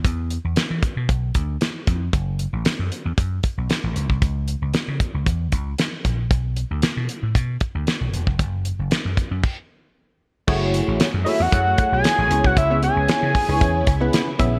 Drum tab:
CC |----------------|----------------|----------------|----------------|
HH |x-x-x-x-x-x-x-x-|x-x-x-x-x-x-x-x-|x-x-x-x-x-x-x-x-|x-x-x-x-x-x-x-x-|
SD |----o-------o---|----o-------o---|----o-------o---|----o-------o---|
BD |o-----o-o-o---o-|o-------o-o----o|o-----o-o-o---o-|o-------o-o----o|

CC |--------x-------|x---------------|----------------|
HH |x-x-x-x---------|--x-x-o-x-x-x-x-|x-x-x-o-x-x-x-x-|
SD |----o-----------|----o-------o---|----o-------o---|
BD |o-----o-o-------|o-------o-o----o|o-----o-o-o---o-|